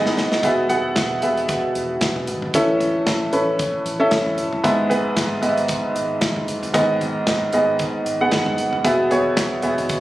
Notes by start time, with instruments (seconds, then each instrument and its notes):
Already playing: fingered electric bass G#1, upright piano G#2 D#3 B3 D#4 G#4 B4 D#5
0.06 snare
0.17 fingered electric bass F#1, snare
0.32 snare
0.43 fingered electric bass E1, upright piano B2 B3 G#4 E5, kick, closed hi-hat
0.69 upright piano B3 G#4 F#5, closed hi-hat, floor tom
0.96 fingered electric bass E1, kick, snare, closed hi-hat
1.22 fingered electric bass E1, upright piano B3 G#4 E5, closed hi-hat
1.37 closed hi-hat
1.49 kick, closed hi-hat
1.75 fingered electric bass E1, closed hi-hat
2.01 fingered electric bass E1, kick, snare, closed hi-hat
2.16 floor tom
2.27 fingered electric bass G#1, closed hi-hat
2.42 floor tom
2.54 fingered electric bass A1, upright piano A2 E3 C#4 A4 E5, kick, closed hi-hat
2.80 closed hi-hat, floor tom
3.07 fingered electric bass A1, kick, snare, closed hi-hat
3.33 fingered electric bass A1, upright piano C#4 A4 B4, closed hi-hat
3.59 kick, closed hi-hat
3.85 fingered electric bass A1, closed hi-hat
4.00 upright piano C#4 A4 E5
4.11 fingered electric bass A1, kick, snare, closed hi-hat
4.26 floor tom
4.38 fingered electric bass F#1, closed hi-hat
4.53 floor tom
4.63 fingered electric bass G#1, upright piano G#2 G#3 B3 G#4 E5, kick, closed hi-hat
4.90 upright piano B3 G#4 B4, closed hi-hat, floor tom
5.17 fingered electric bass G#1, kick, snare, closed hi-hat
5.42 fingered electric bass G#1, upright piano B3 G#4 D#5, closed hi-hat
5.48 upright piano E5
5.58 closed hi-hat
5.68 kick, closed hi-hat
5.96 fingered electric bass G#1, closed hi-hat
6.21 fingered electric bass G#1, kick, snare, closed hi-hat
6.36 floor tom
6.47 fingered electric bass F#1, closed hi-hat
6.63 closed hi-hat, floor tom
6.73 fingered electric bass G#1, upright piano G#2 D#3 B3 G#4 D#5, kick, closed hi-hat
7.01 closed hi-hat, floor tom
7.27 fingered electric bass G#1, kick, snare, closed hi-hat
7.53 fingered electric bass G#1, upright piano B3 G#4 D#5, closed hi-hat
7.79 kick, closed hi-hat
8.06 fingered electric bass G#1, closed hi-hat
8.21 upright piano B3 G#4 F#5
8.31 fingered electric bass G#1, kick, snare, closed hi-hat
8.46 floor tom
8.58 fingered electric bass F#1, closed hi-hat
8.73 floor tom
8.84 fingered electric bass E1, upright piano B2 B3 G#4 E5, kick, closed hi-hat
9.11 upright piano B3 G#4 C#5, closed hi-hat, floor tom
9.37 fingered electric bass E1, kick, snare, clap, closed hi-hat
9.62 fingered electric bass E1, upright piano B3 G#4 E5, closed hi-hat
9.78 closed hi-hat, floor tom
9.89 kick, closed hi-hat